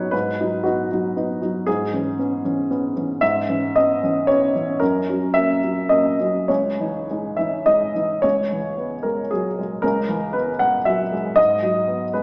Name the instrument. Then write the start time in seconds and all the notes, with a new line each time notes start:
grand piano
Already playing: G#2 F#3 B3 D#4 G#4 B4 C#5
0.11 G#2 B4
0.40 F#3 D#4
0.63 B3 D#4 F#4
0.91 F#3 D#4
1.16 B3 D#4
1.42 F#3 D#4
1.66 G#2 G#4
1.93 E3 C#4
2.19 B3 C#4
2.44 E3 C#4
2.71 B3 C#4
2.96 E3 C#4
3.21 G#2 E5
3.49 E3 C#4
3.76 B3 C#4 D#5
4.03 E3 C#4
4.27 B3 C#4 C#5
4.55 E3 C#4
4.80 F#2 A#4
5.09 F#3 C#4
5.34 A#3 C#4 E5
5.64 F#3 C#4
5.89 A#3 C#4 D#5
6.20 F#3 C#4
6.48 C#2 C#5
6.80 E3 D#4
7.11 G#3 D#4
7.37 E3 D#4 E5
7.66 G#3 D#4 D#5
7.95 E3 D#4
8.22 C#2 C#5
8.52 E3
8.77 B3
9.03 G#3 A#4
9.31 F#3 G#4
9.59 G#3
9.82 C#2 A#4
10.08 E3
10.33 B3 B4
10.59 G#3 F#5
10.85 F#3 E5
11.12 G#3
11.36 G#2 D#5
11.62 F#3
11.88 B3
12.13 G#3 B4